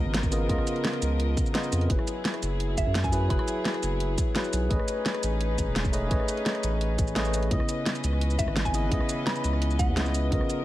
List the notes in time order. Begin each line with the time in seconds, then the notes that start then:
Already playing: C#3 F3 B3 F4 A#4 D#5
0.06 G#1
0.14 snare, closed hi-hat
0.23 kick, shaker
0.31 C#3 B3 F4 A#4 D#5, open hi-hat, shaker
0.48 C#2 C#3 B3 F4 A#4 D#5, kick, closed hi-hat
0.58 cross-stick
0.67 closed hi-hat, shaker
0.76 closed hi-hat
0.84 snare, closed hi-hat
0.93 cross-stick, closed hi-hat
1.02 C#2, closed hi-hat, shaker
1.20 closed hi-hat
1.37 kick, closed hi-hat, shaker
1.46 shaker
1.54 C#3 B3 F4 A#4 D#5, snare, closed hi-hat
1.64 shaker
1.72 F2, cross-stick, open hi-hat, shaker
1.81 closed hi-hat
1.88 F#1 F#3 B3 E4 G#4 B4, kick, closed hi-hat
1.99 cross-stick
2.07 closed hi-hat, shaker
2.25 snare, closed hi-hat
2.34 cross-stick, closed hi-hat
2.42 F#1, closed hi-hat, shaker
2.60 closed hi-hat
2.77 F#1 E5, kick, closed hi-hat, shaker
2.86 F#2
2.95 snare, closed hi-hat
3.04 G#5, kick, shaker
3.12 F#3 E4 G#4 B4, open hi-hat, shaker
3.28 F#1 F#3 E4 G#4 B4 B5, kick, closed hi-hat
3.39 B5, cross-stick
3.48 closed hi-hat, shaker
3.65 snare, closed hi-hat
3.74 cross-stick, closed hi-hat
3.83 F#1, closed hi-hat, shaker
4.00 closed hi-hat
4.18 kick, closed hi-hat, shaker
4.34 F#3 E4 G#4 B4, snare, closed hi-hat
4.44 shaker
4.53 B1, cross-stick, open hi-hat, shaker
4.69 A1 A3 C#4 D#4 G#4 B4 C#5 D#5, kick, closed hi-hat
4.79 cross-stick
4.88 closed hi-hat, shaker
5.06 snare, closed hi-hat
5.14 cross-stick, closed hi-hat
5.23 A1, closed hi-hat, shaker
5.41 closed hi-hat
5.58 A1, kick, closed hi-hat, shaker
5.67 E1
5.76 snare, closed hi-hat
5.85 kick, shaker
5.92 A3 G#4 B4 C#5 D#5, open hi-hat, shaker
6.09 A1 A3 G#4 B4 C#5 D#5, kick, closed hi-hat
6.20 cross-stick
6.28 closed hi-hat, shaker
6.37 closed hi-hat
6.46 snare, closed hi-hat
6.55 cross-stick, closed hi-hat
6.63 A1, closed hi-hat, shaker
6.81 closed hi-hat
6.99 A1, kick, closed hi-hat, shaker
7.07 shaker
7.15 A3 G#4 B4 C#5 D#5, snare, closed hi-hat
7.25 shaker
7.34 cross-stick, open hi-hat, shaker
7.43 closed hi-hat
7.49 C#2 C#3 E3 B3 C#4 E4 B4 D#5, kick, closed hi-hat
7.60 cross-stick
7.69 closed hi-hat, shaker
7.86 snare, closed hi-hat
7.95 closed hi-hat, shaker
8.04 C#2, closed hi-hat, shaker
8.13 cross-stick
8.21 closed hi-hat
8.30 shaker
8.39 C#2 E5, kick, closed hi-hat, shaker
8.48 G#1, cross-stick
8.56 snare, closed hi-hat
8.65 G#5, kick, shaker
8.73 C#3 B3 E4 D#5, open hi-hat, shaker
8.90 C#2 C#3 B3 E4 D#5, kick, closed hi-hat
9.00 cross-stick
9.09 closed hi-hat, shaker
9.27 B5, snare, closed hi-hat
9.36 closed hi-hat, shaker
9.44 C#2, closed hi-hat, shaker
9.53 cross-stick
9.62 closed hi-hat
9.71 shaker
9.79 F#5, kick, closed hi-hat, shaker
9.88 E2
9.96 C#2 C#3 B3 E4 D#5, snare, closed hi-hat
10.06 snare, shaker
10.14 open hi-hat, shaker
10.30 C#2 C#3 F3 B3 F4 A#4 D#5, kick, closed hi-hat
10.41 cross-stick
10.50 closed hi-hat, shaker